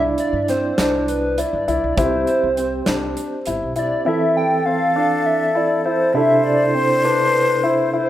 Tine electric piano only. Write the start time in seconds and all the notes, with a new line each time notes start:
Already playing: D4 E4 D5
1.97 C4 G4 C5
4.05 E3 C4 A4
6.14 C3 D4 E4 A4